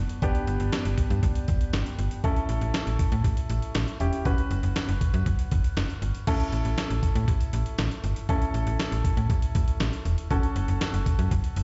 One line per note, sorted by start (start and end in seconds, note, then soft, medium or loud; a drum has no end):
0.00 0.18 B3 medium
0.00 0.18 D4 medium
0.00 0.18 F#4 medium
0.09 closed hi-hat medium
0.22 0.32 G1 loud
0.22 2.20 B3 medium
0.22 2.20 D4 medium
0.22 2.20 G4 medium
0.22 kick loud
0.22 closed hi-hat medium
0.35 closed hi-hat soft
0.47 0.58 G1 loud
0.47 closed hi-hat medium
0.60 0.70 G1 medium
0.60 closed hi-hat medium
0.72 snare loud
0.72 closed hi-hat medium
0.85 0.95 G1 medium
0.85 closed hi-hat medium
0.98 kick medium
0.98 closed hi-hat medium
1.10 1.21 G2 medium
1.10 closed hi-hat soft
1.23 1.33 G1 loud
1.23 kick medium
1.23 closed hi-hat medium
1.35 closed hi-hat medium
1.48 1.59 G1 medium
1.48 kick medium
1.48 closed hi-hat medium
1.61 closed hi-hat soft
1.73 1.84 G1 medium
1.73 snare loud
1.73 closed hi-hat medium
1.86 closed hi-hat soft
1.99 2.09 G1 medium
1.99 closed hi-hat medium
2.11 closed hi-hat medium
2.24 2.34 A1 loud
2.24 3.97 C#4 medium
2.24 3.97 E4 medium
2.24 3.97 A4 medium
2.24 kick loud
2.24 closed hi-hat medium
2.36 closed hi-hat soft
2.49 2.59 A1 loud
2.49 closed hi-hat medium
2.61 2.72 A1 medium
2.61 closed hi-hat medium
2.74 snare loud
2.74 closed hi-hat medium
2.87 2.97 A1 medium
2.87 closed hi-hat medium
2.99 kick medium
2.99 closed hi-hat medium
3.12 3.22 A2 loud
3.12 closed hi-hat soft
3.24 3.35 A1 loud
3.24 kick medium
3.24 closed hi-hat medium
3.37 closed hi-hat medium
3.50 3.60 A1 loud
3.50 closed hi-hat medium
3.62 closed hi-hat soft
3.75 3.85 A1 loud
3.75 snare loud
3.75 closed hi-hat medium
3.88 closed hi-hat soft
4.00 4.11 E1 medium
4.00 4.24 C#4 medium
4.00 4.25 E4 soft
4.00 4.25 G4 medium
4.00 closed hi-hat medium
4.13 closed hi-hat medium
4.25 4.36 F#1 loud
4.25 6.23 C#4 medium
4.25 6.23 F#4 medium
4.25 6.23 B4 medium
4.25 kick loud
4.25 closed hi-hat medium
4.38 closed hi-hat soft
4.51 4.61 F#1 loud
4.51 closed hi-hat medium
4.63 4.74 F#1 medium
4.63 closed hi-hat medium
4.76 snare loud
4.76 closed hi-hat medium
4.88 4.99 F#1 loud
4.88 closed hi-hat medium
5.01 kick medium
5.01 closed hi-hat medium
5.14 5.24 F#2 loud
5.14 closed hi-hat soft
5.26 5.36 F#1 loud
5.26 kick medium
5.26 closed hi-hat medium
5.39 closed hi-hat medium
5.51 5.62 F#1 loud
5.51 kick medium
5.51 closed hi-hat medium
5.64 closed hi-hat soft
5.77 5.87 F#1 loud
5.77 snare loud
5.77 closed hi-hat medium
5.90 closed hi-hat soft
6.02 6.12 G1 medium
6.02 closed hi-hat medium
6.15 closed hi-hat medium
6.27 6.38 A1 loud
6.27 8.25 C#4 medium
6.27 8.25 E4 medium
6.27 8.25 A4 medium
6.27 kick loud
6.27 closed hi-hat medium
6.27 crash medium
6.40 closed hi-hat soft
6.52 6.63 A1 medium
6.52 closed hi-hat medium
6.65 6.75 A1 medium
6.65 closed hi-hat medium
6.78 snare loud
6.78 closed hi-hat medium
6.90 7.00 A1 loud
6.90 closed hi-hat medium
7.03 kick medium
7.03 closed hi-hat medium
7.15 7.26 A2 loud
7.15 closed hi-hat soft
7.28 7.38 A1 loud
7.28 kick medium
7.28 closed hi-hat medium
7.41 closed hi-hat medium
7.53 7.64 A1 loud
7.53 closed hi-hat medium
7.66 closed hi-hat soft
7.78 7.89 A1 loud
7.78 snare loud
7.78 closed hi-hat medium
7.91 closed hi-hat soft
8.04 8.14 G1 medium
8.04 closed hi-hat medium
8.16 closed hi-hat medium
8.29 8.39 A1 loud
8.29 10.27 C#4 medium
8.29 10.27 E4 medium
8.29 10.27 A4 medium
8.29 kick loud
8.29 closed hi-hat medium
8.42 closed hi-hat soft
8.54 8.64 A1 loud
8.54 closed hi-hat medium
8.67 8.77 A1 loud
8.67 closed hi-hat medium
8.79 snare loud
8.79 closed hi-hat medium
8.92 9.02 A1 medium
8.92 closed hi-hat medium
9.04 kick medium
9.04 closed hi-hat medium
9.17 9.27 A2 medium
9.17 closed hi-hat soft
9.30 9.40 A1 loud
9.30 kick medium
9.30 closed hi-hat medium
9.42 closed hi-hat medium
9.55 9.65 A1 loud
9.55 kick loud
9.55 closed hi-hat medium
9.68 closed hi-hat soft
9.80 9.90 A1 loud
9.80 snare loud
9.80 closed hi-hat medium
9.93 closed hi-hat soft
10.05 10.16 E1 medium
10.05 closed hi-hat medium
10.18 closed hi-hat medium
10.30 10.41 F#1 loud
10.30 11.63 C#4 medium
10.30 11.63 F#4 medium
10.30 11.63 A4 medium
10.30 kick loud
10.30 closed hi-hat medium
10.43 closed hi-hat soft
10.56 10.66 F#1 loud
10.56 closed hi-hat medium
10.68 10.79 F#1 medium
10.68 closed hi-hat medium
10.81 snare loud
10.81 closed hi-hat medium
10.94 11.04 F#1 medium
10.94 closed hi-hat medium
11.06 kick medium
11.06 closed hi-hat medium
11.19 11.29 F#2 loud
11.19 closed hi-hat medium
11.31 11.42 F#1 loud
11.31 kick medium
11.31 closed hi-hat medium
11.44 closed hi-hat medium
11.56 11.63 F#1 medium
11.56 closed hi-hat medium